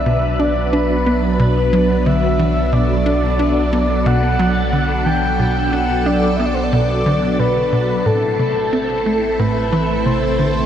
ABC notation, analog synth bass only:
X:1
M:4/4
L:1/8
Q:1/4=90
K:Bphr
V:1 name="Analog synth bass" clef=bass
B,, D D B, B,, F, D, E, | B,, D D B, B,, F, D, E, | B,, D D B, B,, D, B,, B,, | A,, C, C A, A,, E, C, D, |]